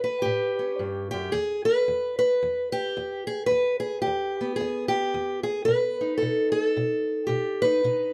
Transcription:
0.00 0.22 A2 medium
0.00 0.80 B4 medium
0.22 0.76 A2 medium
0.22 1.10 G4 medium
0.59 1.32 C#4 soft
0.79 1.12 G2 medium
1.11 1.33 F#2 medium
1.11 1.33 G4 medium
1.32 1.84 E2 medium
1.32 1.65 G#4 medium
1.65 2.17 B4 loud
1.88 2.38 E2 medium
2.19 2.72 B4 medium
2.43 2.92 E2 medium
2.72 3.27 G4 loud
2.97 3.47 E2 medium
3.27 3.46 G#4 medium
3.46 3.79 B4 loud
3.51 4.01 E2 medium
3.80 4.01 G#4 medium
4.02 4.56 G4 medium
4.07 4.56 E2 medium
4.41 6.00 B3 soft
4.56 4.88 G#4 medium
4.60 5.10 E2 medium
4.88 5.43 G4 medium
5.14 5.64 E2 medium
5.43 5.65 G#4 medium
5.65 6.18 B2 medium
5.65 6.17 B4 medium
6.01 7.63 D#4 soft
6.18 6.51 A4 medium
6.22 6.72 B2 medium
6.52 7.61 A4 medium
6.77 7.26 B2 medium
7.27 7.79 B2 medium
7.27 7.64 G4 medium
7.62 7.82 D#4 soft
7.62 8.13 B4 medium
7.84 8.13 B2 medium
7.84 8.13 D#4 soft

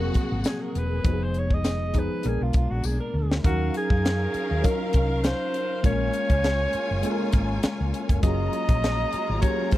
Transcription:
0.00 1.03 A#2 medium
0.00 1.03 C3 medium
0.00 1.04 F3 medium
0.00 1.07 F#3 medium
0.00 3.40 G#3 medium
0.00 1.07 A#3 medium
0.00 1.08 C4 medium
0.00 0.71 F#4 loud
0.00 1.08 G#4 medium
0.00 2.21 G#4 medium
0.00 0.71 A#4 medium
0.00 0.71 F#5 loud
0.14 kick medium
0.14 closed hi-hat medium
0.32 0.43 G#1 medium
0.44 0.65 G#4 medium
0.44 snare loud
0.44 closed hi-hat loud
0.44 tambourine medium
0.63 0.80 A#4 medium
0.75 1.00 E1 medium
0.75 1.25 B4 loud
0.75 closed hi-hat medium
1.04 2.07 F1 loud
1.04 2.24 D#3 medium
1.04 1.66 F3 medium
1.04 1.66 B3 medium
1.04 2.24 B3 medium
1.04 1.66 D#4 medium
1.04 1.13 F#4 medium
1.04 kick loud
1.04 closed hi-hat medium
1.13 1.70 G#4 medium
1.24 1.40 C5 loud
1.34 closed hi-hat medium
1.39 1.56 C#5 medium
1.50 2.00 D#5 loud
1.50 kick medium
1.64 snare medium
1.64 closed hi-hat medium
1.64 tambourine medium
1.93 2.15 F3 medium
1.93 2.16 B3 medium
1.93 2.16 D#4 medium
1.93 2.17 G#4 medium
1.93 kick medium
1.93 closed hi-hat medium
1.99 2.30 B4 medium
2.23 2.38 A#1 loud
2.23 3.44 A#2 medium
2.23 3.44 B2 medium
2.23 3.06 G#3 medium
2.23 3.07 B3 medium
2.23 3.44 D4 medium
2.23 3.07 D4 medium
2.23 3.07 A#4 medium
2.23 closed hi-hat medium
2.28 2.45 G#4 loud
2.41 2.52 B1 medium
2.41 2.56 F4 medium
2.53 2.68 B1 medium
2.53 2.72 F4 medium
2.53 kick medium
2.53 closed hi-hat medium
2.71 2.82 A#1 medium
2.71 2.87 F#4 medium
2.84 2.98 B1 medium
2.84 3.00 G#4 medium
2.84 tambourine loud
3.00 3.41 A#4 medium
3.14 3.38 D2 medium
3.31 snare medium
3.43 3.69 D#2 loud
3.43 3.51 F3 medium
3.43 5.80 F#3 medium
3.43 8.18 C#4 medium
3.43 4.26 C#4 medium
3.43 5.80 C#4 loud
3.43 5.81 D#4 medium
3.43 4.26 D#4 medium
3.43 3.73 F#4 loud
3.43 5.80 A#4 medium
3.43 4.27 A#4 medium
3.43 8.18 F5 medium
3.43 5.80 F5 loud
3.43 4.26 F5 medium
3.43 kick loud
3.43 closed hi-hat medium
3.49 4.29 F#3 medium
3.74 4.67 G#4 loud
3.74 closed hi-hat medium
3.90 4.26 F#2 medium
3.90 kick medium
4.05 snare loud
4.05 closed hi-hat medium
4.34 muted fingered electric bass stroke soft
4.34 closed hi-hat medium
4.51 4.62 D#2 medium
4.62 5.45 F#3 medium
4.62 5.45 C#4 medium
4.62 5.46 D#4 medium
4.62 5.46 F4 medium
4.62 5.46 A#4 medium
4.62 5.26 A#4 loud
4.62 kick medium
4.62 closed hi-hat medium
4.93 5.31 C2 medium
4.93 kick medium
4.93 closed hi-hat medium
5.24 5.84 C5 loud
5.24 snare loud
5.24 closed hi-hat loud
5.54 closed hi-hat medium
5.83 6.08 A#1 loud
5.83 6.65 G#3 medium
5.83 8.20 G#3 medium
5.83 6.65 A#3 medium
5.83 8.20 A#3 medium
5.83 6.65 C#4 medium
5.83 6.66 F4 medium
5.83 8.19 F4 medium
5.83 6.66 A#4 medium
5.83 8.19 C#5 medium
5.83 7.60 C#5 loud
5.83 8.19 G#5 loud
5.83 kick loud
5.83 closed hi-hat medium
6.13 closed hi-hat medium
6.30 6.65 C#2 medium
6.30 kick medium
6.30 closed hi-hat medium
6.44 snare loud
6.44 closed hi-hat medium
6.73 muted fingered electric bass stroke medium
6.73 closed hi-hat medium
6.91 7.01 F#1 medium
7.02 7.84 G#3 medium
7.02 7.85 A#3 medium
7.02 7.85 C#4 medium
7.02 7.86 F4 medium
7.02 7.11 A4 medium
7.02 closed hi-hat medium
7.12 7.89 A#4 loud
7.32 7.57 G#1 medium
7.32 kick medium
7.32 closed hi-hat medium
7.63 muted fingered electric bass stroke medium
7.63 snare loud
7.63 closed hi-hat loud
7.81 7.91 C#2 medium
7.94 closed hi-hat medium
8.09 8.20 F1 medium
8.09 kick loud
8.09 closed hi-hat medium
8.22 8.47 F#1 loud
8.22 9.04 F#3 medium
8.22 9.78 F#3 medium
8.22 9.78 G#3 medium
8.22 9.04 A#3 medium
8.22 9.78 A#3 medium
8.22 9.05 C#4 medium
8.22 9.78 C#4 medium
8.22 9.78 F4 medium
8.22 9.05 F4 medium
8.22 9.78 F4 medium
8.22 9.05 G#4 medium
8.22 9.39 D#5 loud
8.22 9.78 A#5 loud
8.22 kick loud
8.22 closed hi-hat medium
8.53 closed hi-hat medium
8.69 9.04 A#1 medium
8.69 kick medium
8.69 closed hi-hat medium
8.84 snare medium
8.84 closed hi-hat medium
9.13 muted fingered electric bass stroke soft
9.13 closed hi-hat medium
9.29 9.40 G#1 loud
9.41 9.78 F#3 medium
9.41 9.78 A#3 medium
9.41 9.78 C#4 medium
9.41 9.78 F4 medium
9.41 9.50 G4 medium
9.41 9.74 C#5 loud
9.41 kick medium
9.41 closed hi-hat medium
9.50 9.78 G#4 medium
9.71 9.78 F1 loud
9.71 9.78 C5 loud
9.71 kick loud
9.71 closed hi-hat medium

